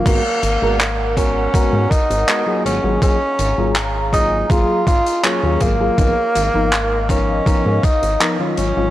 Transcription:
<<
  \new Staff \with { instrumentName = "Ambient pad" } { \time 4/4 \key gis \dorian \tempo 4 = 81 << { ais'2.~ ais'8 <gis' ais''>8~ | <gis' ais''>1 | <ais' dis''>2.~ <ais' dis''>8 <fis cis'''>8 | } \\ { fis''2.~ fis''8 eis''8~ | eis''1~ | eis''1 | } >> }
  \new Staff \with { instrumentName = "Tenor saxophone" } { \time 4/4 \key gis \dorian ais4. cis'4 dis'4 cis'8 | cis'4 r8 dis'8 eis'8 eis'8 cis'8 ais8~ | ais4. cis'4 dis'8 r8 cis'8 | }
  \new Staff \with { instrumentName = "FM electric piano" } { \time 4/4 \key gis \dorian <gis b fis' ais'>16 r8 <gis b fis' ais'>16 r8 <gis b fis' ais'>8 <gis b fis' ais'>8 r8 <gis b fis' ais'>16 <fis ais eis' gis'>8 <fis ais eis' gis'>16 | <fis ais eis' gis'>16 r8 <fis ais eis' gis'>16 r8 <fis ais eis' gis'>8 <fis ais eis' gis'>8 r8 <fis ais eis' gis'>16 <fis ais eis' gis'>8 <fis ais eis' gis'>16 | <eis b dis' ais'>16 r8 <eis b dis' ais'>16 r8 <eis b dis' ais'>8 <eis b dis' ais'>8 r8 <eis b dis' ais'>16 <dis fis cis' eis'>8 <dis fis cis' eis'>16 | }
  \new Staff \with { instrumentName = "Analog synth bass" } { \clef bass \time 4/4 \key gis \dorian gis,,16 r16 gis,,16 gis,,4~ gis,,16 gis,16 gis,16 r16 gis,,16 r8 gis,,16 gis,,16 | r8 gis,,16 gis,,4~ gis,,16 gis,,16 r16 gis,,16 r8 dis,16 gis,,8 | gis,,16 r16 gis,,16 gis,,4~ gis,,16 gis,16 gis,16 r16 gis,,16 r8 gis,,16 gis,,16 | }
  \new DrumStaff \with { instrumentName = "Drums" } \drummode { \time 4/4 <cymc hh bd>8 hh8 <hc hh>8 <hh bd>8 <hh bd>8 <hh bd>16 hh16 <hc hh>8 hh8 | <hh bd>8 hh8 <hc hh>8 <hh bd>8 <hh bd>8 <hh bd>16 hh16 <hc hh>8 <hh bd>8 | <hh bd>8 hh8 <hc hh>8 <hh bd>8 <hh bd>8 <hh bd>16 hh16 <hc hh>8 hh8 | }
>>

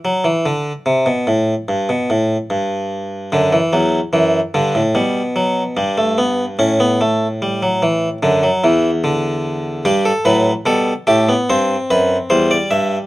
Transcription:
<<
  \new Staff \with { instrumentName = "Harpsichord" } { \time 4/4 \key g \major \tempo 4 = 73 fis16 e16 d8 c16 b,16 a,8 g,16 b,16 a,8 g,4 | r1 | r1 | g'16 a'16 b'8 a'8 g'8 c''8 b'8 c''16 d''16 e''8 | }
  \new Staff \with { instrumentName = "Harpsichord" } { \clef bass \time 4/4 \key g \major << { r1 | d16 e16 fis8 e8 d8 g8 fis8 g16 a16 b8 | cis'16 b16 a8 g16 fis16 e8 d16 fis16 e8 d4 | g8 fis8 g8 a16 b16 c'4 g4 | } \\ { r1 | fis,8 e,8 fis,8 g,16 a,16 b,4 g,4 | a,2 fis,8 e,4. | g,8 a,8 b,8 a,8 g,8 fis,8 e,8 g,8 | } >> }
>>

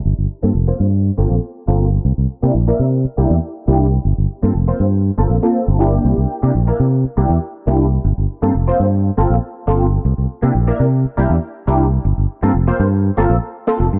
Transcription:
<<
  \new Staff \with { instrumentName = "Analog polysynth" } { \time 4/4 \key c \mixolydian \tempo 4 = 120 r8. <bes c' f' a'>16 r16 <bes c' f' c''>16 r8. <bes c' f' a'>16 r8. <bes c' f' a'>16 r8 | r8. <bes d' e' g'>16 r16 <bes d' e' bes'>16 r8. <bes d' e' g'>16 r8. <bes d' e' g'>16 r8 | r8. <bes c' f' a'>16 r16 <bes c' f' c''>16 r8. <bes c' f' a'>16 r16 <bes c' f' a'>8. <bes d' e' g'>8~ | <bes d' e' g'>8. <bes d' e' g'>16 r16 <bes d' e' bes'>16 r8. <bes d' e' g'>16 r8. <bes d' e' g'>16 r8 |
r8. <bes c' f' a'>16 r16 <bes c' f' c''>16 r8. <bes c' f' a'>16 r8. <bes c' f' a'>16 r8 | r8. <bes d' e' g'>16 r16 <bes d' e' bes'>16 r8. <bes d' e' g'>16 r8. <bes d' e' g'>16 r8 | r8. <bes c' f' a'>16 r16 <bes c' f' c''>16 r8. <bes c' f' a'>16 r8. <bes c' f' a'>16 r8 | }
  \new Staff \with { instrumentName = "Fingered electric bass" } { \clef bass \time 4/4 \key c \mixolydian g,,16 g,,16 r16 g,16 f,,16 r16 g,8 r16 g,,16 bes,,16 r8 g,,8 r16 | c,16 c,16 r16 c16 bes,,16 r16 c8 r16 c,16 e,16 r8 c,8 r16 | g,,16 g,,16 r16 g,16 f,,16 r16 g,8 r16 g,,16 bes,,16 r8 g,,8 r16 | c,16 c,16 r16 c16 bes,,16 r16 c8 r16 c,16 e,16 r8 c,8 r16 |
g,,16 g,,16 r16 g,16 f,,16 r16 g,8 r16 g,,16 bes,,16 r8 g,,8 r16 | c,16 c,16 r16 c16 bes,,16 r16 c8 r16 c,16 e,16 r8 c,8 r16 | g,,16 g,,16 r16 g,16 f,,16 r16 g,8 r16 g,,16 bes,,16 r8. f,,16 g,16 | }
>>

